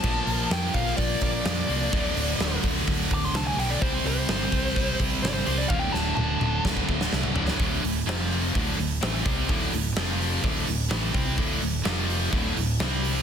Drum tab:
CC |x---------------|----------------|----------------|----------------|
HH |--o-o-o-o-o-o-o-|o-o-o-o-o-o-o-o-|o-o-o-o-o-o-o-o-|----------------|
SD |----o--o----o---|----o--o----o---|----o--o----o---|--o-----o--oo--o|
T1 |----------------|----------------|----------------|o---------------|
T2 |----------------|----------------|----------------|----o-o---------|
FT |----------------|----------------|----------------|-------------oo-|
BD |o-----o-o-o-----|o-----o-o-o-----|o-----o-o-o-----|o-------ooo-----|

CC |----------------|----------------|----------------|
HH |o-o-o-o-o-o-o---|o-o-o-o-o-o---o-|o-o-o-o-o-o-o-o-|
SD |----o-------o---|----o-------o---|----o-------o---|
T1 |----------------|----------------|----------------|
T2 |----------------|----------------|----------------|
FT |----------------|----------------|----------------|
BD |o-------o-----o-|o-------o-----o-|o-------o-------|